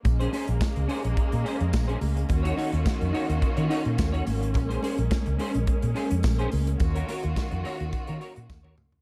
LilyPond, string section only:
\new Staff \with { instrumentName = "String section" } { \time 4/4 \key bes \minor \tempo 4 = 106 << { <aes bes des'>1 | <ees f' ges'>1 | aes1 | <ees f' ges'>1 | } \\ { r1 | bes1~ | bes1~ | bes1 | } >> }